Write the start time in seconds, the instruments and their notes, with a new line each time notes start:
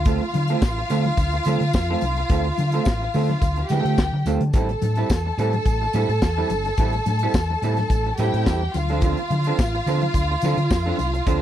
Already playing: fingered electric bass D2, string section F4 F5
0.05 clean electric guitar A3 C4 F4 A4, kick, closed hi-hat, tambourine, muted conga, low conga
0.21 muted clean electric guitar stroke, muted conga
0.34 fingered electric bass D3, muted clean electric guitar stroke, closed hi-hat, high conga
0.48 clean electric guitar A3 C4 F4 A4, closed hi-hat
0.62 fingered electric bass A1, kick, snare, tambourine
0.77 muted clean electric guitar stroke, muted conga
0.90 fingered electric bass D3, clean electric guitar A3 C4 F4 A4, closed hi-hat, tambourine, low conga
1.04 muted clean electric guitar stroke, closed hi-hat, high conga
1.17 fingered electric bass D2, kick, closed hi-hat, tambourine, muted conga
1.32 muted clean electric guitar stroke, closed hi-hat
1.45 fingered electric bass D3, clean electric guitar A3 C4 F4 A4, closed hi-hat, tambourine, high conga
1.61 fingered electric bass D3, muted clean electric guitar stroke, closed hi-hat
1.73 fingered electric bass F2, muted clean electric guitar stroke, kick, snare, tambourine
1.90 clean electric guitar A3 C4 F4 A4
2.01 fingered electric bass C2, muted clean electric guitar stroke, closed hi-hat, tambourine, high conga
2.17 muted clean electric guitar stroke, closed hi-hat
2.29 fingered electric bass D2, clean electric guitar A3 C4 F4 A4, kick, closed hi-hat, tambourine, low conga
2.47 muted clean electric guitar stroke
2.57 fingered electric bass D3, muted clean electric guitar stroke, closed hi-hat, tambourine, high conga
2.72 clean electric guitar A3 C4 F4 A4, closed hi-hat
2.85 fingered electric bass A1, kick, snare, tambourine, muted conga
3.02 muted clean electric guitar stroke, muted conga
3.14 fingered electric bass D3, clean electric guitar A3 C4 F4 A4, open hi-hat, tambourine, low conga
3.29 muted clean electric guitar stroke, snare, closed hi-hat, high conga
3.42 fingered electric bass D2, muted clean electric guitar stroke, kick, closed hi-hat, tambourine, muted conga
3.56 muted clean electric guitar stroke, closed hi-hat, muted conga
3.69 fingered electric bass D3, clean electric guitar A3 C4 F4 A4, string section G4 G5, closed hi-hat, tambourine, high conga
3.85 fingered electric bass D3, clean electric guitar A3 C4 F4 A4, closed hi-hat
3.98 fingered electric bass D2, muted clean electric guitar stroke, kick, snare, tambourine, high conga
4.13 fingered electric bass D3, muted clean electric guitar stroke
4.25 fingered electric bass D2, clean electric guitar A3 C4 F4 A4, closed hi-hat, tambourine, high conga, low conga
4.41 fingered electric bass D3, muted clean electric guitar stroke, closed hi-hat
4.53 fingered electric bass A1, clean electric guitar G3 C4 E4 A4, string section A4 A5, kick, closed hi-hat, tambourine, low conga
4.68 muted clean electric guitar stroke, closed hi-hat, muted conga
4.82 fingered electric bass A2, muted clean electric guitar stroke, closed hi-hat, tambourine, high conga
4.95 clean electric guitar G3 C4 E4 A4, closed hi-hat
5.10 fingered electric bass E2, kick, snare, tambourine, muted conga
5.26 muted clean electric guitar stroke
5.38 fingered electric bass A2, clean electric guitar G3 C4 E4 A4, closed hi-hat, tambourine, low conga
5.53 muted clean electric guitar stroke, closed hi-hat, high conga
5.66 fingered electric bass A1, kick, closed hi-hat, tambourine, muted conga
5.82 muted clean electric guitar stroke, muted conga
5.93 fingered electric bass A2, clean electric guitar G3 C4 E4 A4, closed hi-hat, tambourine, high conga
6.09 fingered electric bass A2, muted clean electric guitar stroke, closed hi-hat
6.22 fingered electric bass E2, muted clean electric guitar stroke, kick, snare, tambourine, muted conga
6.38 clean electric guitar G3 C4 E4 A4, muted conga
6.50 fingered electric bass G1, muted clean electric guitar stroke, closed hi-hat, tambourine, high conga
6.65 muted clean electric guitar stroke, closed hi-hat
6.77 fingered electric bass A1, clean electric guitar G3 C4 E4 A4, kick, closed hi-hat, tambourine, muted conga, low conga
6.93 muted clean electric guitar stroke, closed hi-hat, muted conga
7.06 fingered electric bass A2, muted clean electric guitar stroke, closed hi-hat, tambourine, high conga
7.19 closed hi-hat
7.23 clean electric guitar G3 C4 E4 A4
7.34 fingered electric bass E2, kick, snare, tambourine, muted conga
7.50 muted clean electric guitar stroke, muted conga
7.62 fingered electric bass A2, clean electric guitar G3 C4 E4 A4, closed hi-hat, tambourine, low conga
7.77 muted clean electric guitar stroke, snare, closed hi-hat, high conga
7.90 fingered electric bass A1, muted clean electric guitar stroke, kick, closed hi-hat, tambourine
8.07 muted clean electric guitar stroke, muted conga
8.18 fingered electric bass A2, clean electric guitar G3 C4 E4 A4, string section G4 G5, closed hi-hat, tambourine, high conga
8.34 fingered electric bass A2, clean electric guitar G3 C4 E4 A4, closed hi-hat
8.46 fingered electric bass E2, clean electric guitar G3 C4 E4 A4, kick, snare, tambourine
8.62 muted clean electric guitar stroke
8.74 fingered electric bass D2, string section F4 F5, muted clean electric guitar stroke, closed hi-hat, tambourine, high conga
8.89 clean electric guitar F3 C4 D4 A4, closed hi-hat
9.01 clean electric guitar F3 C4 D4 A4, kick, closed hi-hat, tambourine, muted conga, low conga
9.17 muted clean electric guitar stroke, closed hi-hat, muted conga
9.30 fingered electric bass D3, muted clean electric guitar stroke, closed hi-hat, high conga
9.44 clean electric guitar C4 D4 A4, closed hi-hat
9.48 clean electric guitar F3
9.59 fingered electric bass A1, kick, snare, tambourine, muted conga
9.75 muted clean electric guitar stroke, closed hi-hat
9.86 fingered electric bass D3, clean electric guitar F3 C4 D4 A4, closed hi-hat, tambourine, low conga
10.01 muted clean electric guitar stroke, closed hi-hat, high conga
10.14 fingered electric bass D2, kick, closed hi-hat, tambourine, muted conga
10.31 muted clean electric guitar stroke
10.41 fingered electric bass D3, clean electric guitar F3 C4 D4, closed hi-hat, tambourine, high conga
10.46 clean electric guitar A4
10.57 fingered electric bass D3, muted clean electric guitar stroke, closed hi-hat
10.70 fingered electric bass F2, muted clean electric guitar stroke, kick, snare, tambourine
10.86 clean electric guitar F3 C4 D4 A4, muted conga
10.98 fingered electric bass C2, muted clean electric guitar stroke, closed hi-hat, tambourine, high conga
11.14 muted clean electric guitar stroke, closed hi-hat
11.26 fingered electric bass D2, clean electric guitar F3 C4 D4 A4, kick, closed hi-hat, tambourine, muted conga, low conga